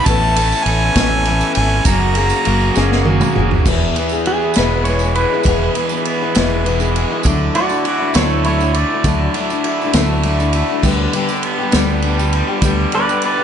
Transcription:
0.05 A1 A2 E3 A3 B3 C#4 A4 B4 A5, kick, ride, tambourine
0.10 C#4 A4
0.36 A3 C#4 A4, ride
0.41 B3
0.52 tambourine
0.64 A1 E3 A3 G#5, ride
0.69 B3 C#4 A4
0.96 A1 A2 E3 A3 B3 C#4 A4, kick, snare, ride, tambourine
1.25 E3 A3 B3, ride
1.30 C#4 A4
1.41 tambourine
1.54 G#1 A4 G#5, ride
1.58 A3 B3 C#4
1.85 F#1 F#2 C#3 F#3 A#3 F#4 G#4 A#4 A#5, kick, ride, tambourine
1.89 C#4 G#4
2.01 tambourine
2.15 F#3 F#4 G#4, ride
2.19 A#3 C#4
2.30 tambourine
2.45 F#1 F#3 A#3 C#4 F#4, ride, tambourine
2.49 G#4
2.61 tambourine
2.75 F#1 F#3 A#3 C#4 F#4 G#4, snare, tambourine
2.92 snare
3.05 F#3 A#3 C#4 G#4, high tom
3.09 F#4
3.20 mid tom, tambourine
3.35 F#1 F#3 A#3 C#4 F#4 G#4, mid tom
3.51 floor tom
3.64 E1 E2 B2 E3 B3 E4 G#4 B4, kick, crash, tambourine
3.95 E3 B3 E4, ride, tambourine
4.00 G#4
4.09 G#4, tambourine
4.14 E3 B3 E4
4.25 B3 G#4, ride
4.42 E3 B3 E4 G#4
4.54 E1 E2 B2 G#3 B4, snare, ride, tambourine
4.58 E3 B3 E4 G#4
4.70 tambourine
4.84 E3 C#5, ride
4.88 B3 E4 G#4
4.99 G#4, tambourine
5.04 E3 B3 E4
5.15 G#3 B4, ride
5.33 E3 B3 E4 G#4
5.43 E1 E2 B2, kick, ride, tambourine
5.48 E3 B3 E4 G#4
5.74 E3 B3 E4 G#4, ride, tambourine
5.89 B3 E4 G#4, tambourine
5.94 E3
6.05 B3, ride
6.21 E3 B3 E4 G#4
6.35 E1 E2 B2 E3 G#3 B3 E4 G#4, snare, ride, tambourine
6.50 tambourine
6.64 E3 B3 E4 G#4, ride
6.80 E3 B3 E4 G#4, tambourine
6.94 G#3, ride
7.11 E3 B3 E4 G#4
7.23 D2 D3 F#3 A3 D4 E4 F#4, kick, ride, tambourine
7.27 E4
7.55 D3 F#3 A3 D4 E4 F#4 D5, ride
7.68 A3 D4 E4, tambourine
7.84 E4 F#4 D5, ride
7.99 A3 D4 E4
8.14 D2 D3 F#3 A3 D4 E4 C#5, snare, ride, tambourine
8.30 tambourine
8.44 D3 F#3 A3 D4 E4 C#5, ride
8.59 A3 D4 E4, tambourine
8.74 A3 D5, ride
8.90 A3 D4 E4
9.04 D2 D3 F#3 A3 D4 E4, kick, ride, tambourine
9.34 D3 F#3 A3, ride, tambourine
9.39 D4 E4
9.50 A3 D4 E4, tambourine
9.64 E4, ride
9.81 D4 E4, tambourine
9.86 A3
9.93 D2 D3 F#3 A3 D4, snare, ride, tambourine
9.98 E4
10.23 D3 F#3 A3 D4 E4, ride
10.38 A3 D4 E4, tambourine
10.53 A3, ride
10.69 A3 D4 E4
10.82 D2 D3 G3 B3 D4 G4 B4, kick, crash, tambourine
11.13 D3 G3 B3 G4, ride, tambourine
11.29 G3 B3 G4, tambourine
11.43 B3, ride
11.58 G3 B3 G4
11.71 D2 D3 G3 B3 G4, snare, ride, tambourine
11.90 tambourine
12.02 D3 G3 B3, ride
12.07 G4
12.18 G3 B3 G4, tambourine
12.33 G3, ride
12.48 G3 B3 G4
12.62 D2 D3 G3 B3 G4, kick, ride, tambourine
12.92 D3 G3 B3 G4 B4 D5, ride, tambourine
13.09 G3 B3 G4, tambourine
13.22 B3 B4, ride
13.26 D5
13.37 G3 B3 G4

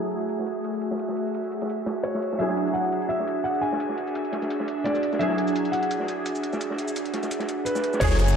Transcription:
Already playing: F#3 A3 E4 F#4 G#4 E5
0.03 closed hi-hat
0.11 closed hi-hat, ride
0.21 closed hi-hat
0.29 closed hi-hat, ride, cabasa
0.39 snare
0.46 closed hi-hat, ride, cabasa
0.64 closed hi-hat, ride, cabasa
0.74 ride, cabasa
0.82 closed hi-hat, ride
0.91 snare, cabasa
0.99 closed hi-hat, ride, cabasa
1.09 snare
1.17 closed hi-hat, open hi-hat
1.26 cabasa
1.34 closed hi-hat, ride, cabasa
1.44 closed hi-hat
1.52 closed hi-hat, ride
1.61 snare, closed hi-hat, cabasa
1.69 closed hi-hat, ride, cabasa
1.86 snare, closed hi-hat, ride, cabasa
2.04 C#5, closed hi-hat, ride, cabasa
2.14 snare, cabasa
2.22 closed hi-hat, ride
2.32 snare, cabasa
2.39 F#3 D4 E4 G#4 E5, closed hi-hat, ride, cabasa
2.49 snare
2.57 closed hi-hat, ride
2.67 cabasa
2.74 F#5, closed hi-hat, ride, cabasa
2.84 closed hi-hat
2.92 closed hi-hat, ride
3.02 closed hi-hat
3.09 E5, closed hi-hat, ride, cabasa
3.20 snare
3.27 closed hi-hat, ride, cabasa
3.44 F#5, closed hi-hat, ride, cabasa
3.55 ride, cabasa
3.61 G#5, closed hi-hat, ride
3.72 snare, cabasa
3.80 closed hi-hat, ride, cabasa
3.89 snare
3.98 closed hi-hat, open hi-hat
4.07 cabasa
4.15 closed hi-hat, ride, cabasa
4.25 closed hi-hat
4.32 snare, closed hi-hat, ride
4.42 snare, closed hi-hat, cabasa
4.50 closed hi-hat, ride, cabasa
4.60 snare
4.68 closed hi-hat, ride, cabasa
4.84 D5, snare, closed hi-hat, ride, cabasa
4.94 snare, cabasa
5.03 closed hi-hat, ride
5.13 snare, cabasa
5.19 F#3 D4 E4 G#4 E5, closed hi-hat, ride, cabasa
5.29 snare
5.38 closed hi-hat, ride
5.48 cabasa
5.56 closed hi-hat, ride, cabasa
5.65 closed hi-hat
5.72 F#5, closed hi-hat, ride
5.83 closed hi-hat
5.91 closed hi-hat, ride, cabasa
6.00 snare
6.08 closed hi-hat, ride, cabasa
6.25 closed hi-hat, ride, cabasa
6.35 ride, cabasa
6.43 closed hi-hat, ride
6.53 snare, cabasa
6.60 closed hi-hat, ride, cabasa
6.70 snare
6.78 closed hi-hat, open hi-hat, cabasa
6.88 cabasa
6.96 closed hi-hat, ride, cabasa
7.05 closed hi-hat
7.13 snare, closed hi-hat, ride
7.23 snare, closed hi-hat, cabasa
7.31 closed hi-hat, ride, cabasa
7.40 snare, closed hi-hat
7.49 closed hi-hat, ride, cabasa
7.65 B4, closed hi-hat, ride, cabasa
7.75 snare, cabasa
7.84 closed hi-hat, ride
7.93 snare, cabasa
8.00 F#1 F#3 A3 E4 F#4 G#4 C#5 E5, kick, closed hi-hat, ride, downlifter, cabasa
8.11 snare
8.19 cross-stick, closed hi-hat, ride, cabasa
8.28 cabasa

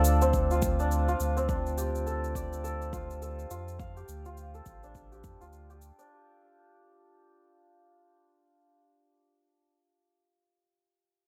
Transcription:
Already playing: D2 C4 D4 F4 A4 C5 D5
0.05 cabasa
0.22 C4, cabasa
0.34 kick, cabasa
0.51 F4, cabasa
0.62 kick, cabasa
0.80 D4, cabasa
0.91 cabasa
1.08 F4, cabasa
1.20 D2, cabasa
1.37 C4, cabasa
1.49 D4, kick, cabasa
1.66 cabasa
1.77 G4, cabasa
1.95 cabasa
2.06 A4, cabasa
2.24 cabasa
2.35 D5, kick, cabasa
2.53 cabasa
2.64 A4, cabasa
2.82 cabasa
2.93 F4, kick, cabasa
3.11 cabasa
3.22 A4, cabasa
3.39 cabasa
3.51 F2 F4, cabasa
3.68 cabasa
3.79 F5, kick, cabasa
3.97 G4, cabasa
4.08 D2, cabasa
4.26 F4, cabasa
4.37 cabasa
4.54 A4, cabasa
4.66 A1, kick, cabasa
4.83 D4, cabasa
4.95 kick, cabasa
5.12 G4, cabasa
5.24 F2, kick, cabasa
5.41 D2 F4, cabasa
5.53 cabasa
5.70 G4, cabasa
5.82 cabasa
5.99 D4, cabasa

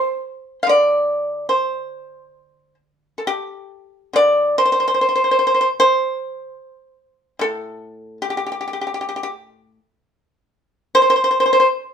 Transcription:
Already playing: C5
0.63 D3 F5
0.69 D5
1.49 C5
3.18 A4
3.27 G4
4.13 D3 D5
4.58 C5
4.65 C5
4.72 C5
4.80 C5
4.88 C5
4.94 C5
5.01 C5
5.09 C5
5.16 C5
5.24 C5
5.31 C5
5.39 C5
5.47 C5
5.55 C5
5.61 C5
5.80 C5
7.39 A2 A4
8.22 G4
8.30 G4
8.37 G4
8.46 G4
8.52 G4
8.61 G4
8.68 G4
8.73 G4
8.81 G4
8.87 G4
8.94 G4
9.01 G4
9.09 G4
9.16 G4
9.23 G4
10.95 C5
11.02 C5
11.10 C5
11.16 C5
11.24 C5
11.31 C5
11.40 C5
11.46 C5
11.53 C5
11.60 C5

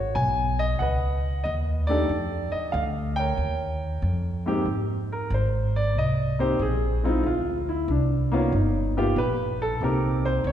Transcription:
Already playing: G#1 F#4 C#5
0.15 B1 G#5
0.59 D#5
0.79 C#2 B4 D#5 F#5
1.44 D#2 D#5
1.87 A3 D4 D#4 G4 A4 D5
2.09 F2
2.52 D#5, muted upright bass stroke
2.72 D2 F5
3.16 A#4 C#5 G5
3.37 D#2
4.02 F2
4.46 G#2 A#3 C4 D#4 G4
4.65 G#2
5.12 A#4
5.30 G#1 C5
5.76 D5
5.95 C2 D#5
6.39 A#3 C4 D#4 G4 C5
6.59 A#1 G#4
7.03 G#3 C4 D#4 E4 F4
7.23 D2 F4
7.69 E4
7.88 C2 D4
8.32 A#3 B3 C#4 D#4 F4
8.52 G1 D#4
8.97 A#3 B3 D#4 F4 G4
9.16 A#1 B4
9.62 A4
9.81 C2 A#3 C4 D#4 G4 A#4
10.25 C5
10.44 C#2 C#5

